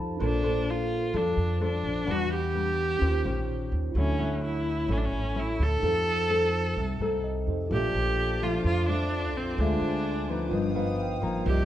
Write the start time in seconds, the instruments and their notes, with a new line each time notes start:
Already playing: upright bass F2, nylon-string guitar F3 D#4 A4 C5, tine electric piano D#4 G4 A4 C5 F5 A5 B5
0.17 upright bass A#1, nylon-string guitar A#3 D4 A4 C5, tine electric piano D4 F4 A4
0.23 viola D4, tine electric piano C5
0.43 nylon-string guitar D4 A4 C5
0.70 viola F4
1.14 upright bass F2, nylon-string guitar F3 D4 A4 C5, viola D4
1.37 upright bass F2
1.61 nylon-string guitar D4 A4 C5, viola D4
1.83 upright bass A#1
2.05 upright bass E2, nylon-string guitar E3 G3 D4 F#4, tine electric piano D4 F#5
2.11 viola F#4, tine electric piano B4
2.34 viola G4
2.55 nylon-string guitar G3 D4
2.98 upright bass D#2, nylon-string guitar D#3 C#4 G4 C5, tine electric piano C#4 F4 G4
3.05 tine electric piano C5
3.25 upright bass A#1, nylon-string guitar C#4 G4 C5
3.72 upright bass D#2
3.92 upright bass D2, tine electric piano E4 F#4
3.96 nylon-string guitar D3 F#3 C#4 E4, viola C#4, tine electric piano A4 C#5
4.19 nylon-string guitar F#3 C#4 E4
4.45 viola E4
4.88 upright bass A1, nylon-string guitar A2 F#3 C#4 E4
4.92 viola C#4
4.98 viola D4
5.05 viola C#4
5.12 upright bass A1
5.35 nylon-string guitar F#3 C#4 E4
5.39 viola E4
5.59 upright bass D2, viola A4
5.79 upright bass F2, nylon-string guitar F3, tine electric piano D#4 G4
5.83 nylon-string guitar C4 D#4 A4, tine electric piano A4 C5
6.30 nylon-string guitar C4 D#4 A4
6.76 upright bass C2, nylon-string guitar C3
7.00 upright bass C2, nylon-string guitar C4 D#4 A4
7.24 tine electric piano D#5
7.47 upright bass F2, tine electric piano D#4 G4 A4 C5
7.69 upright bass A#1, nylon-string guitar A#2 F3 A3 D4, tine electric piano F4 A4, violin section F4 A5 D6
7.73 viola G4, tine electric piano C5 D5
7.94 upright bass A#1
8.42 nylon-string guitar F3 A3 D4, viola F4
8.64 upright bass F2, nylon-string guitar F2, viola F4
8.89 nylon-string guitar F3 A3 D4, viola D4
9.34 upright bass A#1, viola C4
9.55 upright bass D2, tine electric piano F4 G#4, violin section G#5
9.59 nylon-string guitar D3 G#3 C4 F4, viola D4, violin section C5, tine electric piano C5 E5
9.81 upright bass D2
10.29 nylon-string guitar F3 B3 D#4
10.49 upright bass G1, nylon-string guitar G2, tine electric piano F4 A#4, violin section F5 G5 D#6
10.53 tine electric piano B4 D#5
10.75 nylon-string guitar F3 B3 D#4, tine electric piano F5
11.00 tine electric piano G5
11.22 upright bass G1, nylon-string guitar F3 A#3 D#4, tine electric piano A#5
11.45 upright bass C2, nylon-string guitar C3, tine electric piano F4 A#4 D5, viola G4, violin section A#4 D6
11.51 tine electric piano D#5